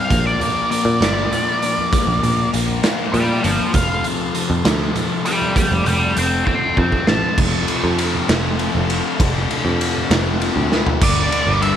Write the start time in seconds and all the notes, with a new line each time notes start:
Already playing: F5
0.09 A#1 A#2 F3 A#3 D4 A#4, kick, closed hi-hat, high conga
0.27 D5
0.40 F3 A#3, closed hi-hat, low conga
0.55 low conga
0.71 A#2 F3 A#3 D5, closed hi-hat
0.85 A#2, low conga
1.00 G1 A#2 F3 A#3, snare, closed hi-hat, high conga, low conga
1.17 low conga
1.32 closed hi-hat, low conga
1.62 F3 A#3, closed hi-hat
1.78 low conga
1.92 A#2 F3 A#3, kick, closed hi-hat, high conga
2.07 A#1
2.22 A#1 F3 A#3, closed hi-hat, low conga
2.39 low conga
2.52 A#1 A#2 F3 A#3, closed hi-hat
2.68 low conga
2.83 A#2 F3 A#3, snare, closed hi-hat, high conga, low conga
3.00 low conga
3.13 A#2 D5 G5, closed hi-hat, low conga
3.43 G1 F3 A#3 C5 F5, closed hi-hat
3.60 low conga
3.73 F1 F2 C3 F3 A3 C4 A4 F5, kick, closed hi-hat, high conga
4.04 C3 F3, closed hi-hat
4.21 low conga
4.33 F2 C3 F3, closed hi-hat
4.50 F2, low conga
4.64 D2 F2 C3 F3, snare, closed hi-hat, high conga, low conga
4.81 low conga
4.95 closed hi-hat, low conga
5.25 C3 F3 D5 G5, closed hi-hat
5.41 low conga
5.55 F2 C3 F3 D4 D5 G5, kick, closed hi-hat, high conga
5.72 F1
5.84 F1 C3 F3 D5, closed hi-hat
5.88 G5
6.15 F1 F2 C3 F3 G5 C6, closed hi-hat
6.46 F2 C3 F3 G5 C6, kick, high conga, low conga
6.62 low conga
6.77 F2 G5 C6, kick, low conga
6.92 kick
7.07 A1 C3 F3 A5, snare
7.23 low conga
7.37 F1 F2 C3 F3 A3 C4 A4, kick, crash, high conga, low conga
7.54 low conga
7.68 ride
7.84 F2
7.98 ride
8.15 low conga
8.29 F1 F2 C3 F3, snare, ride, high conga
8.44 low conga
8.59 ride
8.75 F1, low conga
8.90 ride
9.19 F1 F2 C3 F3 D4, kick, ride, high conga, low conga
9.36 low conga
9.51 ride
9.65 F2
9.81 ride
9.96 low conga
10.10 F1 F2 C3 F3, snare, ride, high conga
10.27 low conga
10.41 ride
10.56 D2, low conga
10.72 snare
10.87 floor tom
11.00 G1 G2 D3 G3 A#3 D4 A#4 D5, kick, crash
11.30 D3 G3, ride
11.47 G1
11.61 G2 D3 G3 E5, ride